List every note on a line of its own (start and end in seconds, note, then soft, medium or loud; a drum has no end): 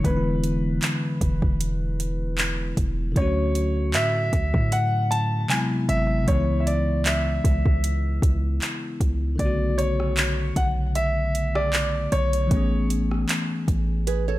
0.00 3.10 D3 medium
0.00 3.11 E3 medium
0.04 0.79 E1 loud
0.04 3.12 G#3 medium
0.04 3.14 B3 medium
0.04 2.73 B4 medium
0.04 kick loud
0.04 closed hi-hat medium
0.10 0.14 D#4 medium
0.17 3.18 E4 medium
0.44 closed hi-hat medium
0.82 clap loud
0.82 closed hi-hat medium
1.21 1.41 E1 loud
1.21 kick medium
1.21 closed hi-hat medium
1.42 2.73 E1 loud
1.42 kick medium
1.61 closed hi-hat medium
2.00 closed hi-hat medium
2.38 clap medium
2.38 closed hi-hat medium
2.77 3.14 E1 loud
2.77 kick medium
2.77 closed hi-hat medium
3.12 3.95 D2 loud
3.12 5.44 D3 medium
3.12 5.45 F#3 medium
3.12 kick loud
3.16 5.46 A3 medium
3.16 5.47 C#4 medium
3.16 3.97 C#5 medium
3.16 closed hi-hat medium
3.22 5.49 F#4 medium
3.55 closed hi-hat medium
3.94 4.31 A2 loud
3.94 4.75 E5 loud
3.94 clap loud
3.94 closed hi-hat medium
4.33 4.53 D2 loud
4.33 kick medium
4.33 closed hi-hat medium
4.54 5.46 A2 loud
4.54 kick medium
4.72 5.12 F#5 medium
4.72 closed hi-hat medium
5.11 5.51 A5 loud
5.11 closed hi-hat medium
5.48 6.27 C3 medium
5.48 6.27 F#3 medium
5.48 6.28 G#3 medium
5.48 6.29 B3 medium
5.48 5.58 G#5 medium
5.48 clap medium
5.48 closed hi-hat medium
5.53 6.29 E4 medium
5.89 6.26 G#1 loud
5.89 6.25 E5 loud
5.89 closed hi-hat medium
6.24 7.41 C#2 loud
6.24 9.33 C#3 medium
6.24 9.35 E3 medium
6.24 kick loud
6.24 closed hi-hat medium
6.28 9.36 G#3 medium
6.28 9.37 B3 medium
6.28 6.61 C#5 medium
6.34 6.38 D#4 medium
6.40 9.42 E4 medium
6.60 6.67 E5 medium
6.67 7.07 D5 medium
6.67 closed hi-hat medium
7.06 8.19 E5 medium
7.06 clap loud
7.06 closed hi-hat medium
7.45 7.65 C#2 loud
7.45 kick medium
7.45 closed hi-hat medium
7.66 8.20 C#2 loud
7.66 kick medium
7.84 closed hi-hat medium
8.22 8.60 C#2 loud
8.22 kick medium
8.22 closed hi-hat medium
8.62 clap medium
8.62 closed hi-hat medium
9.01 9.38 C#2 medium
9.01 kick medium
9.01 closed hi-hat medium
9.36 10.52 B1 loud
9.36 12.45 D3 medium
9.36 12.46 A3 medium
9.36 9.79 D5 medium
9.36 kick loud
9.36 closed hi-hat medium
9.40 12.49 C#3 medium
9.40 12.48 B3 medium
9.45 12.50 F#4 medium
9.78 10.58 C#5 medium
9.78 closed hi-hat medium
10.00 cross-stick medium
10.17 clap loud
10.17 closed hi-hat medium
10.56 12.08 B1 loud
10.56 10.65 F#5 medium
10.56 kick medium
10.56 closed hi-hat medium
10.95 11.57 E5 medium
10.95 closed hi-hat medium
11.35 closed hi-hat medium
11.55 12.14 D5 medium
11.55 cross-stick medium
11.73 clap medium
11.73 closed hi-hat medium
12.12 12.49 B1 loud
12.12 12.86 C#5 medium
12.12 closed hi-hat soft
12.33 closed hi-hat medium
12.47 13.26 A1 loud
12.47 14.39 E3 medium
12.47 14.39 A3 medium
12.47 kick loud
12.47 closed hi-hat medium
12.52 14.39 B3 medium
12.52 14.39 C#4 medium
12.57 14.39 G#4 medium
12.90 closed hi-hat medium
13.11 cross-stick medium
13.29 clap loud
13.29 closed hi-hat medium
13.68 14.39 A1 medium
13.68 kick medium
13.68 closed hi-hat medium
14.07 14.27 G#4 medium
14.07 14.27 B4 medium
14.07 closed hi-hat medium
14.28 14.39 A4 medium
14.28 14.39 C#5 medium